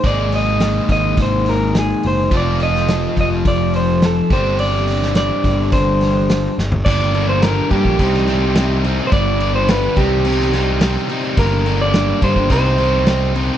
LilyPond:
<<
  \new Staff \with { instrumentName = "Clean electric guitar" } { \time 4/4 \key g \phrygian \tempo 4 = 106 d''8 ees''4 ees''8 c''8 bes'8 aes'8 c''8 | d''8 ees''4 ees''8 d''8 c''8 a'8 c''8 | d''4 d''4 c''4. r8 | d''8. c''16 bes'8 g'2 r16. c''32 |
d''8. c''16 b'8 g'2 r8 | bes'8. d''8. c''8 c''4. r8 | }
  \new Staff \with { instrumentName = "Distorted electric guitar" } { \clef bass \time 4/4 \key g \phrygian <aes bes ees' aes' ees''>1 | <f c' f' a'>2.~ <f c' f' a'>8 <g c' d' g'>8~ | <g c' d' g'>2.~ <g c' d' g'>8 r8 | <g, d g bes d'>8 <g, d g bes d'>8 <g, d g bes d'>8 <g, d g bes d'>8 <c g c' ees'>8 <c g c' ees'>8 <c g c' ees'>8 <c g c' ees'>8 |
<g, d g b d'>8 <g, d g b d'>8 <g, d g b d'>8 <c g c' ees'>8 <c g c' ees'>8 <c g c' ees'>8 <c g c' ees'>8 <c g c' ees'>8 | <g, d g bes d'>8 <g, d g bes d'>8 <g, d g bes d'>8 <g, d g bes d'>8 <c g c' ees'>8 <c g c' ees'>8 <c g c' ees'>8 <c g c' ees'>8 | }
  \new Staff \with { instrumentName = "Picked electric bass" } { \clef bass \time 4/4 \key g \phrygian aes,,4. aes,,8 aes,,4. fis,,8 | f,,4. f,,8 f,,4. g,,8~ | g,,4. g,,8 g,,4. g,,8 | g,,4. g,16 bes,,16 c,2 |
g,,4. c,2 r8 | g,,4. g,16 g,,16 c,2 | }
  \new DrumStaff \with { instrumentName = "Drums" } \drummode { \time 4/4 <hho bd>8 hho8 <hho sn>8 <hho bd>8 <hho bd>8 <hho sn>8 <hho sn>8 hho8 | <hho bd>8 hho16 sn16 <hho sn>8 <hho bd>8 <hho bd>8 hho8 <hho sn>8 <hho bd>8 | hho8 hho16 sn16 <hho sn>8 <hho bd>8 <hho bd>8 <hho sn>8 <hho sn>8 sn16 tomfh16 | <cymc bd>8 cymc8 <cymc sn>8 <cymc bd>16 bd16 <cymc bd>16 sn16 <cymc sn>8 <cymc sn>8 cymc8 |
<cymc bd>8 cymc8 <cymc sn>8 <cymc bd>8 cymc16 sn16 <cymc sn>8 <cymc sn>8 cymc8 | <cymc bd>8 cymc8 <cymc sn>8 <cymc bd>16 bd16 <cymc bd>8 cymc8 <cymc sn>8 cymc8 | }
>>